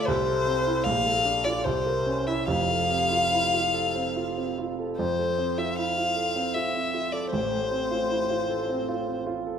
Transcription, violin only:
\new Staff \with { instrumentName = "Violin" } { \time 3/4 \key f \major \tempo 4 = 76 c''4 f''8. d''16 c''8. e''16 | f''2~ f''8 r8 | c''8. e''16 f''4 e''8. d''16 | c''2~ c''8 r8 | }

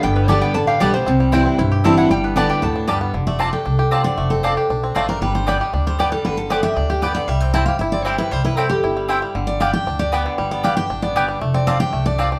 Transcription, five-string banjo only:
\new Staff \with { instrumentName = "Five-string banjo" } { \time 4/4 \key g \mixolydian \tempo 4 = 232 <b d'>8 g8 d'8 b8 d'8 g'8 g8 d'8 | c'8 g8 e'8 c'8 e'8 g'8 g8 e'8 | g8 b8 d'8 g'8 b8 d'8 g8 b8 | d8 a8 d'8 g'8 d'8 g'8 c'8 d8 |
a8 c'8 d'8 g'8 d'8 c'8 a8 d'8 | g8 d'8 g8 g'8 d'8 g8 d'8 g8 | d4 d'8 g'8 d'8 g'8 b8 d8 | g8 c'8 e'8 g'8 e'8 c'8 g8 e'8 |
g8 e'8 g8 g'8 e'8 g8 e'8 g8 | d4 d'8 g'8 d'8 g'8 b8 d8 | g8 b8 d'8 g'8 d'8 b8 g8 d'8 | a8 c'8 d'8 g'8 a8 d'8 g'8 d'8 | }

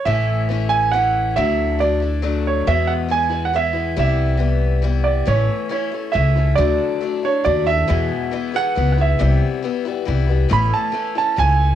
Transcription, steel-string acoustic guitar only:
\new Staff \with { instrumentName = "Steel-string acoustic guitar" } { \time 3/4 \key a \major \tempo 4 = 138 <a, e a cis' e'>4 <e a cis' e'>4 <e a cis' e'>4 | <d fis a d' e'>4 <fis a d' e'>8 <a d' e'>8 <fis a d' e'>4 | <e, b, e gis b e'>4 <e gis b e'>8 <e gis b e'>8 <e gis b e'>8 <e gis b e'>8 | <c e g b e'>4 <e g b e'>4 <e g b e'>4 |
<a, e a cis' e'>4 <e a cis' e'>8 <a cis' e'>8 <e a cis' e'>8 <a cis' e'>8 | <d fis a d' e'>4 <fis a d' e'>8 <a d' e'>8 <fis a d' e'>8 <a d' e'>8 | <e, b, e gis b e'>4 <e gis b e'>8 <e gis b e'>8 <e gis b e'>8 <e gis b e'>8 | <c e g b e'>4 <e g b e'>8 <g b e'>8 <e g b e'>8 <g b e'>8 |
<a, e a cis' e'>4 <e a cis' e'>8 <a cis' e'>8 <e a cis' e'>4 | }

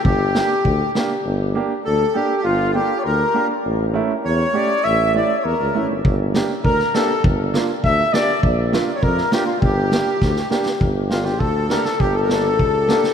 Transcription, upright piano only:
\new Staff \with { instrumentName = "Upright piano" } { \time 2/4 \tempo 4 = 101 r8 <bes d' g'>16 r8. <bes d' g'>16 r16 | r8 <bes d' g'>16 r8. <bes d' g'>16 r16 | r8 <bes d' g'>16 r8. <bes d' g'>16 r16 | r8 <a cis' e'>16 r8. <a cis' g'>16 r16 |
r8 <a cis' e'>16 r8. <a cis' e'>16 r16 | r8 <bes d' g'>16 r8. <bes d' g'>16 r16 | r8 <bes d' f'>16 r8. <bes d' g'>16 r16 | r8 <bes d' f'>16 r8. <bes d' f'>16 r16 |
r8 <bes d' g'>16 r8. <bes d' g'>16 r16 | r8 <bes d' g'>16 r8. <bes d' g'>16 r16 | r8 <bes d' g'>16 r8. <bes d' g'>16 r16 | }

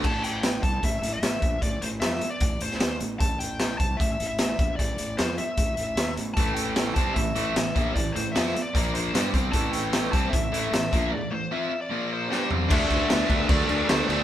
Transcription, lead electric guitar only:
\new Staff \with { instrumentName = "Lead electric guitar" } { \time 4/4 \key a \minor \tempo 4 = 152 a''8 g''4 a''8 e''8. e''4~ e''16 | d''8 c''8 e''8. d''8. c''4 r8 | a''8 g''4 a''8 e''8. e''4~ e''16 | d''4 c''8 e''2 r8 |
a''8 g''4 a''8 e''8. e''4~ e''16 | d''8 c''8 e''8. d''8. c''4 r8 | a''8 g''4 a''8 e''8. e''4~ e''16 | d''8 c''8 e''8. d''8. c''4 r8 |
e''2 d''4 c''4 | }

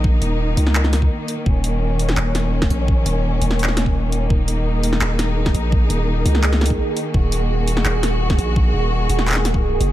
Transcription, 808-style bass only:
\new Staff \with { instrumentName = "808-style bass" } { \clef bass \time 4/4 \key ees \minor \tempo 4 = 169 bes,,8 ees,,4 des,4. r4 | ees,,2 ees,,4. bes,,8~ | bes,,8 ees,,4 ees,,2~ ees,,8 | ees,,2 ees,,4. bes,,8~ |
bes,,8 ees,,4 des,4. r4 | ees,,2 ees,,4. bes,,8~ | bes,,8 ees,,4 ees,,2 ges,,8 | }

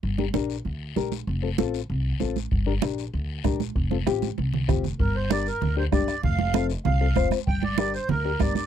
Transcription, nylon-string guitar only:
\new Staff \with { instrumentName = "Nylon-string guitar" } { \time 4/4 \key g \minor \tempo 4 = 194 r8 <d' g' bes'>8 <d' g' bes'>8 r4. <d' g' bes'>8 r8 | r8 <c' f' a'>8 <c' f' a'>8 r4. <c' f' a'>8 r8 | r8 <d' g' bes'>8 <d' g' bes'>8 r4. <d' g' bes'>8 r8 | r8 <c' f' a'>8 <c' f' g'>8 r4. <c' f' g'>8 r8 |
r4 <d' g' bes'>8 r4 <d' g' bes'>8 <d' g' bes'>8 r8 | r4 <c' f' a'>8 r4 <c' f' a'>8 <c' f' c''>8 r8 | r4 <d' g' bes'>8 r4 <d' g' bes'>8 <d' g' bes'>8 r8 | }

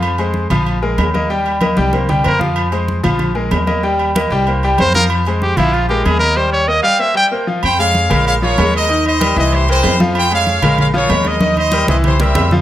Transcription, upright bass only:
\new Staff \with { instrumentName = "Upright bass" } { \clef bass \time 4/4 \key f \minor \tempo 4 = 190 f,4. bes,,4. ees,4~ | ees,4. c,4. f,4~ | f,4. bes,,4. ees,4~ | ees,4. c,4. f,4~ |
f,4. bes,,4. ees,4~ | ees,4. r2 r8 | f,4. bes,,4. ees,4~ | ees,4. c,4. f,4~ |
f,4. bes,,4. ees,4~ | ees,4. c,4. f,4 | }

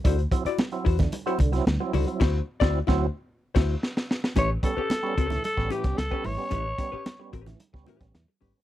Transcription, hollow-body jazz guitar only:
\new Staff \with { instrumentName = "Hollow-body jazz guitar" } { \time 4/4 \key a \mixolydian \tempo 4 = 111 <e' fis' c''>16 r8 <e' fis' d''>16 r8 <e' fis' c''>16 r8 <e' fis' c''>16 r4 <e' fis' c''>16 r16 | <e' fis' c''>8 r16 <e' fis' d''>8 <e' fis' c''>8 r8. <e' fis' c''>8 r4 | <cis' g' b'>16 r8 <cis' g' b'>16 r8 <cis' g' b'>16 r8. <cis' g' b'>16 r8 <cis' g' b'>16 r8 | <cis' g' b'>16 r8 <cis' g' b'>16 r8 <cis' g' b'>16 r8. <cis' g' b'>16 r8. <cis' g' b'>16 r16 | }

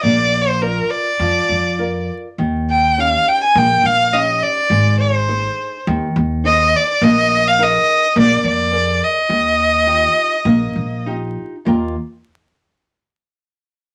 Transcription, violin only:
\new Staff \with { instrumentName = "Violin" } { \time 4/4 \key ees \major \tempo 4 = 103 \tuplet 3/2 { d''4 c''8 } bes'8 d''2 r8 | r8 g''8 f''8 g''16 aes''16 g''8 f''8 ees''8 d''8~ | d''8 c''4. r4 ees''8 d''8 | ees''8. f''16 ees''4 d''8 d''4 ees''8~ |
ees''2. r4 | r1 | }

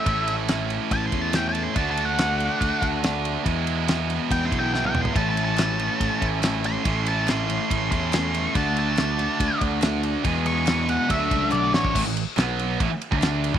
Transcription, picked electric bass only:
\new Staff \with { instrumentName = "Picked electric bass" } { \clef bass \time 4/4 \key a \major \tempo 4 = 141 a,,2 a,,8 e,4. | d,2 d,16 r16 d,4. | e,2 e,8 b,,4. | a,,2 a,,16 r16 a,,4. |
a,,2 a,,8 e,4. | d,2 d,16 r16 d,4. | e,2 d,8 cis,8 b,,8 a,,8 | a,,16 a,,8 r16 b,,4 a,,16 r8 d,4 a,,16 | }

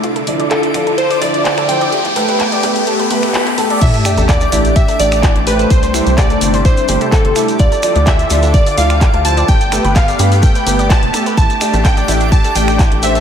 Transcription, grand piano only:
\new Staff \with { instrumentName = "Grand piano" } { \time 4/4 \key g \mixolydian \tempo 4 = 127 r8 <f e' d''>16 r8. <f e' d''>16 r8. <f e' d''>8 r8 <f e' c''>8 | r8 <a g' b'>16 r8. <a g' b'>16 r8. <a g' b'>8 r8 <a g' a'>8 | r8 <a g' d''>16 r8. <a g' d''>16 r8. <a g' d''>8 r8 <a g' c''>8 | r8 <a e' c''>16 r8. <a e' c''>16 r8. <a e' c''>8 r8 <a e' a'>8 |
r8 <f e' d''>16 r8. <f e' d''>16 r8. <f e' d''>8 r8 <f e' c''>8 | r8 <a g' b'>16 r8. <a g' b'>16 r8. <a g' b'>8 r8 <a g' a'>8 | r8 <a g' d''>16 r8. <a g' d''>16 r8. <a g' d''>8 r8 <a g' c''>8 | }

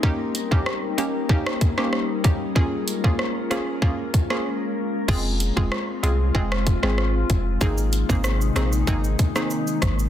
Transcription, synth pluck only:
\new Staff \with { instrumentName = "Synth pluck" } { \time 4/4 \key f \minor \tempo 4 = 95 <bes des' ees' g'>8. <bes des' ees' g'>16 r8 <bes des' ees' g'>16 r16 <bes des' ees' g'>16 r8 <bes des' ees' g'>16 r8 <bes des' ees' g'>16 r16 | <bes des' f' aes'>8. <bes des' f' aes'>16 r8 <bes des' f' aes'>16 r16 <bes des' f' aes'>16 r8 <bes des' f' aes'>16 r4 | <aes c' f' aes'>16 r8 <aes c' f' aes'>16 r8 <aes c' f' aes'>16 r16 <aes c' f' aes'>16 r8 <aes c' f' aes'>16 r4 | <bes c' ees' aes'>16 r8 <bes c' ees' aes'>16 r8 <bes c' ees' aes'>16 r16 <bes c' ees' aes'>16 r8 <bes c' ees' aes'>16 r4 | }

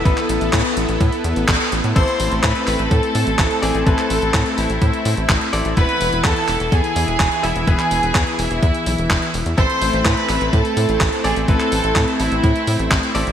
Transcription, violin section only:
\new Staff \with { instrumentName = "Violin section" } { \time 4/4 \key c \major \tempo 4 = 126 r1 | \key a \minor <c'' c'''>4 <b' b''>4 <a' a''>4. <gis' gis''>8 | <a' a''>4. <e' e''>2 r8 | <b' b''>4 <a' a''>4 <gis' gis''>4. <e' e''>8 |
<gis' gis''>4. <e' e''>2 r8 | <c'' c'''>4 <b' b''>4 <a' a''>4. <gis' gis''>8 | <a' a''>4. <e' e''>2 r8 | }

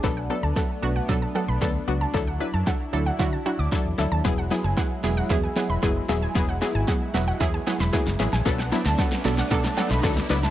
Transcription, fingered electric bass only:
\new Staff \with { instrumentName = "Fingered electric bass" } { \clef bass \time 4/4 \key b \dorian \tempo 4 = 114 r8. d,16 r8 b,,8 b,8 r16 b,,16 r8 cis,8 | d,8. fis,16 r8 d,8 d8 r16 d,16 r16 e,16 d,16 dis,16 | e,,8. fis,,16 r8 e,,8 e,8 r16 e,,16 fis,,8 dis,,8 | e,,8. gis,,16 r8 e,,8 e,8 r16 e,,16 r16 fis,,16 a,,16 ais,,16 |
b,,8. d,16 r8 b,,8 b,8 r16 b,,16 d,8 cis,8 | }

